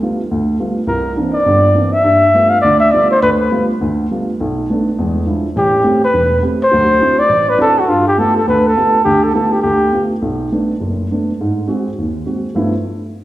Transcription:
0.02 G3 A3 B3 F4
0.31 D2
0.59 G3 A3 B3 F4
0.87 C2 A#4
1.17 E3 A#3 C4 D4
1.34 D5
1.46 G1 G2
1.75 E3 A#3 C4 D4
1.93 E5
2.04 G2
2.34 G3 A3 B3 F4
2.50 F5
2.61 D2 D3 D5
2.80 E5
2.91 G3 A3 B3 F4 D5
3.11 C5
3.22 D2 B4
3.39 B4
3.51 G3 A3 B3 F4
3.81 D2 D3
4.11 G3 A3 B3 F4
4.40 B1
4.70 A3 B3 D4
4.99 E2 G#3
5.27 F3 G#3 D4 E4
5.56 A1 G4
5.84 A3 C4 G4
6.04 B4
6.14 E1
6.42 A3 C4 G4
6.63 C5
6.71 D2 F#3
7.01 C4 D4 E4 F#4
7.19 D5
7.29 A1
7.49 B4
7.58 C4 D4 E4 F#4 A4
7.79 F#4
7.88 G2 F4
8.08 G4
8.18 A3 B3 F4 G4 A4
8.37 A4
8.47 D2 B4
8.67 A4
8.76 A3 B3 F4 G4
9.04 D2 D3 G4
9.24 A4
9.34 A3 B3 F4 G4 A4
9.52 G4
9.62 D2 G4
9.93 A3 B3 F4 G4
10.22 B1
10.52 A3 B3 D4
10.80 F#1
11.11 A3 B3 D4
11.41 G#2
11.67 G#3 C4 F#4
11.98 D#2
12.26 G#3 C4 F#4
12.55 G2 F3 A3 B3 E4

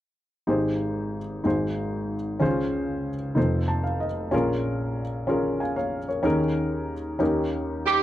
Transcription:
0.47 G#1 G#2 D#4 G4 G#4 C5
1.44 G#1 G#2 D#4 F#4 G#4 C5
2.40 C#2 C#3 C#4 D#4 G#4 C5
2.47 F4
3.35 F1 F2 D#4 F4 A4 C5
3.68 A5
3.84 F5
4.00 D#5
4.31 A#1 A#2 C#4 F4 G#4 A#4
5.27 C#4 F4 G#4 A#4
5.60 F5 G#5
5.76 C#5 F5
6.08 A#4 C#5
6.23 D#2 D#3 C#4 D#4 G#4 A#4
7.19 D#2 D#3 C#4 D#4 G4 A#4
7.85 C4 D#4 G4

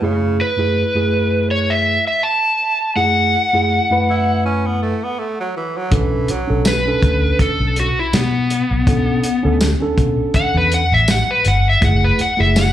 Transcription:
0.01 F#2 C#3 A3 E4 G#4
0.41 B4
0.57 F#2 A3 E4 G#4
0.94 F#2 A3 E4 G#4
1.51 C#5
1.70 E5
2.07 E5
2.23 A5
2.95 F#2 A3 E4 G#4 F#5
3.53 F#2 A3 E4 G#4
3.90 F#2 A3 E4 B4
4.10 E4
4.45 C#4
4.66 B3
4.82 A3
5.04 B3
5.19 A3
5.40 F#3
5.57 E3
5.77 F#3
5.91 B1 E3 C#4 D4 A4, kick, closed hi-hat
6.28 F#3, muted fingered electric bass stroke, closed hi-hat
6.47 B1 C#4 D4 A4
6.65 B4, snare, closed hi-hat, tambourine
6.85 C#4 D4 A4
7.02 D2, kick, closed hi-hat
7.39 A4, kick, closed hi-hat
7.60 B1
7.76 F#4, closed hi-hat
7.99 E4
8.13 B2 B3, snare, closed hi-hat, tambourine
8.50 closed hi-hat
8.71 B1
8.86 B2 C#4 D4 A4, kick, closed hi-hat
9.24 closed hi-hat
9.43 D2 C#4 D4 A4
9.61 snare, closed hi-hat, tambourine
9.80 C#4 D4 A4
9.98 B2, kick, closed hi-hat
10.34 F#5, muted fingered electric bass stroke, kick, closed hi-hat
10.55 E2 B4
10.72 F#5, closed hi-hat
10.92 A1 E5
11.08 F#5, snare, closed hi-hat, tambourine
11.31 B4
11.45 G1 F#5, closed hi-hat
11.69 E5
11.81 F#1 A3 E4 G#4 F#5, kick, closed hi-hat
12.04 B4
12.19 F#5, muted fingered electric bass stroke, closed hi-hat
12.37 F#1 A3 E4 G#4 E5
12.56 F#5, snare, closed hi-hat, tambourine

